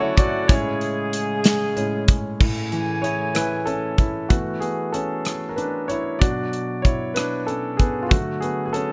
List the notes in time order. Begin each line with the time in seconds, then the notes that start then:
Already playing: C#3 D3 F#3 A3 C#4 F#4 A4 D5 F#5
0.00 E4 C#5
0.17 F#4 D5, kick, closed hi-hat
0.48 A2 C#3 G#3 C#4 E4 G#4 C#5, kick, closed hi-hat
0.81 closed hi-hat
1.13 closed hi-hat
1.44 snare, closed hi-hat
1.76 A2 G#3 C#4, closed hi-hat
2.08 kick, closed hi-hat
2.40 A2 C#3 A3 G#5, kick, crash
2.72 E3, closed hi-hat
3.02 E4 G#4 C#5, closed hi-hat
3.34 E3 E4 B4, cross-stick, closed hi-hat
3.66 C#4 A4, closed hi-hat
3.98 E4, kick, closed hi-hat
4.29 E3 A3 B3 F#4, kick, closed hi-hat
4.60 B3 G#4, closed hi-hat
4.92 C#4 A4, closed hi-hat
5.25 cross-stick, closed hi-hat
5.49 A#4
5.56 D4 B4, closed hi-hat
5.88 E4 C#5, closed hi-hat
6.19 B2 F#3 D4 F#4 D5, kick, closed hi-hat
6.53 closed hi-hat
6.82 E4 C#5, kick, closed hi-hat
7.14 D4 B4, cross-stick, closed hi-hat
7.47 C#4 A4, closed hi-hat
7.77 B3 G#4, kick, closed hi-hat
8.03 F4
8.09 D3 F#3 A3 F#4, kick, closed hi-hat
8.40 B3 G#4, closed hi-hat
8.66 G#4
8.73 C#4 A4, closed hi-hat